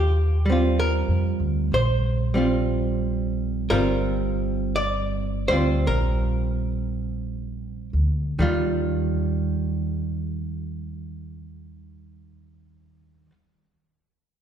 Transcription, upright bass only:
0.00 1.05 D#2 medium
1.08 1.38 F2 soft
1.40 1.69 D2 medium
1.72 3.66 A#1 medium
3.70 5.45 G1 medium
5.49 5.85 D2 medium
5.88 7.89 A#1 medium
7.93 8.36 D2 medium
8.38 13.25 D#2 medium

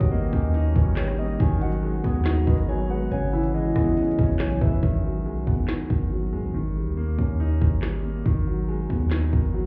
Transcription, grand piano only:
0.00 0.74 D#3 medium
0.00 0.96 G3 medium
0.11 1.17 A#3 loud
0.33 1.40 C#4 medium
0.54 1.40 D#4 loud
0.76 1.38 D#3 medium
0.97 1.40 G3 medium
1.19 1.40 A#3 medium
1.40 2.46 D#3 loud
1.61 2.67 F#3 medium
1.83 2.89 G#3 medium
2.04 3.11 B3 medium
2.26 3.11 D#4 loud
2.47 3.11 D#3 medium
2.69 3.11 F#3 medium
2.90 3.11 G#3 medium
3.11 4.17 C#3 medium
3.33 4.38 E3 medium
3.54 4.60 G#3 medium
3.76 4.83 B3 medium
3.97 4.83 C#4 loud
4.19 4.83 C#3 medium
4.40 4.83 E3 medium
4.61 4.83 G#3 medium
4.83 5.88 D#3 loud
5.04 6.10 F#3 medium
5.26 6.31 G#3 medium
5.47 6.54 B3 medium
5.68 6.54 D#4 medium
5.90 6.53 D#3 medium
6.11 6.54 F#3 medium
6.33 6.54 G#3 medium
6.54 7.60 D#3 medium
6.76 7.81 G3 medium
6.97 8.03 A#3 medium
7.19 8.26 C#4 medium
7.40 8.26 D#4 loud
7.61 8.24 D#3 medium
7.83 8.26 G3 medium
8.04 8.26 A#3 medium
8.26 9.31 D#3 loud
8.47 9.53 F#3 medium
8.69 9.66 G#3 medium
8.90 9.66 B3 medium
9.11 9.66 D#4 medium
9.33 9.66 D#3 medium
9.54 9.66 F#3 medium

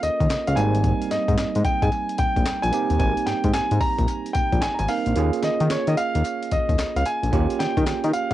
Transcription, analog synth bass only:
0.03 0.10 D#2 medium
0.20 0.28 D#2 medium
0.30 0.37 C#2 soft
0.48 0.55 C#2 medium
0.57 0.94 G#1 loud
1.12 1.18 G#2 soft
1.28 1.36 G#2 loud
1.39 1.46 G#2 medium
1.56 1.64 G#2 loud
1.83 1.90 G#2 medium
2.19 2.26 A#1 medium
2.37 2.44 A#1 loud
2.46 2.53 A#1 medium
2.64 2.71 A#1 medium
2.90 2.98 D#2 loud
3.00 3.14 G#1 loud
3.27 3.34 G#2 soft
3.44 3.52 G#2 loud
3.54 3.61 G#2 medium
3.71 3.79 G#2 loud
3.99 4.07 A#1 loud
4.35 4.42 A#1 soft
4.53 4.61 A#1 loud
4.62 4.69 G#1 soft
4.80 4.88 G#1 loud
5.07 5.15 A#1 medium
5.16 5.31 D#2 loud
5.43 5.50 D#3 medium
5.61 5.69 D#3 loud
5.70 5.77 D#3 soft
5.88 5.96 D#3 loud
6.15 6.23 D#2 loud
6.52 6.59 D#2 soft
6.69 6.77 D#2 medium
6.79 6.86 C#2 soft
6.96 7.04 C#2 loud
7.23 7.31 A#1 medium
7.33 7.47 D#2 loud
7.60 7.67 D#3 soft
7.77 7.85 D#3 loud
7.87 7.94 D#3 medium
8.04 8.12 D#3 loud

